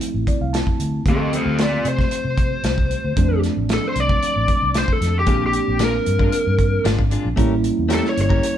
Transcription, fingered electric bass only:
0.14 0.24 A1 medium
0.27 muted fingered electric bass stroke soft
0.41 0.61 C2 medium
0.80 1.00 D2 medium
1.06 1.37 D2 medium
1.45 1.76 D2 medium
1.85 2.05 C3 medium
2.24 2.55 C3 medium
2.63 2.95 C2 medium
3.04 3.14 D2 medium
3.17 3.48 F2 medium
3.57 3.77 A1 medium
3.96 4.16 C2 medium
4.36 4.46 A1 medium
4.48 muted fingered electric bass stroke soft
4.62 4.83 C2 medium
5.01 5.29 F2 medium
5.27 5.58 A#1 medium
5.68 5.98 A#1 medium
6.07 6.27 G2 medium
6.47 6.77 G2 medium
6.85 7.16 G#1 medium
7.25 7.35 A#1 medium
7.37 7.68 A1 medium
7.79 7.99 E2 medium
8.17 8.37 G1 medium

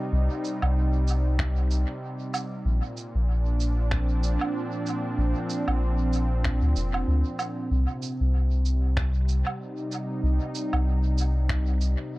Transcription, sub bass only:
0.12 0.29 C2 loud
0.62 1.85 C2 loud
2.65 2.81 A#1 loud
3.15 4.38 A#1 loud
5.18 5.34 A#1 medium
5.68 6.62 A#1 loud
6.62 6.74 D2 medium
6.76 7.04 F1 medium
7.08 7.24 D2 medium
7.71 7.87 C2 loud
8.20 9.43 C2 loud
10.23 10.39 C2 loud
10.73 11.96 C2 loud

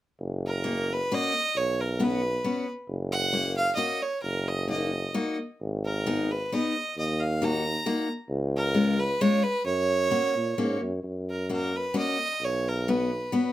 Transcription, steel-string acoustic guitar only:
0.64 0.86 A#3 medium
0.64 0.86 C#4 soft
0.64 0.86 F#4 soft
1.12 1.32 A#3 medium
1.12 1.32 C#4 soft
1.12 1.32 F#4 medium
1.99 2.21 B3 medium
1.99 2.20 C#4 soft
1.99 2.21 F#4 medium
2.44 2.65 B3 medium
2.44 2.65 C#4 soft
2.44 2.65 F#4 soft
3.33 3.54 A#3 soft
3.33 3.54 C#4 soft
3.33 3.54 F#4 soft
3.77 3.99 A#3 medium
3.77 3.99 C#4 soft
3.77 4.00 F#4 medium
4.68 4.90 A#3 soft
4.68 4.90 D#4 soft
4.68 4.90 F#4 soft
5.14 5.37 A#3 soft
5.14 5.37 D#4 soft
5.14 5.36 F#4 medium
6.06 6.28 B3 soft
6.06 6.28 D#4 soft
6.06 6.28 G#4 soft
6.52 6.74 B3 medium
6.52 6.74 D#4 medium
6.52 6.74 G#4 medium
7.42 7.63 A#3 medium
7.42 7.63 D#4 soft
7.42 7.63 F#4 medium
7.86 8.07 A#3 medium
7.86 8.07 D#4 soft
7.86 8.07 F#4 medium
8.74 8.96 G#3 medium
8.74 8.96 C#4 soft
8.74 8.96 F4 soft
9.21 9.42 G#3 medium
9.21 9.42 C#4 medium
9.21 9.42 F4 medium
10.11 10.33 A#3 soft
10.11 10.33 C#4 soft
10.11 10.33 F#4 medium
10.58 10.80 A#3 medium
10.58 10.80 C#4 medium
10.58 10.80 F#4 medium
11.49 11.72 A#3 soft
11.49 11.72 C#4 soft
11.49 11.72 F#4 soft
11.94 12.17 A#3 medium
11.94 12.17 C#4 medium
11.94 12.17 F#4 soft
12.88 13.09 B3 soft
12.88 13.09 C#4 soft
12.88 13.09 F#4 soft
13.32 13.53 B3 medium
13.32 13.53 C#4 soft
13.32 13.53 F#4 medium

